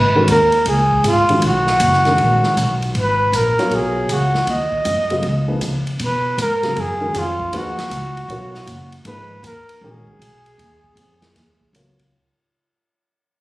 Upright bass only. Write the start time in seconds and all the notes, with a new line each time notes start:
Already playing: G#1
0.28 D#2
0.66 C#2
1.04 G#1
1.29 muted upright bass stroke
1.42 B1
1.80 F#1
2.19 A#1
2.44 muted upright bass stroke
2.57 B1
2.95 G#1
3.32 A#1
3.58 muted upright bass stroke
3.71 B1
4.09 C#2
4.47 D#2
4.85 F#2
5.22 C#2
5.61 C#3
6.00 B2
6.38 G#2
6.76 F#2
7.15 F2
7.53 D#2
7.90 C#2
8.28 B1
8.66 F#1
9.05 G#1
9.43 D#2
9.81 A#1
10.07 muted upright bass stroke
10.19 B1
10.58 D#2
10.96 F2
11.34 D#2
11.73 C#2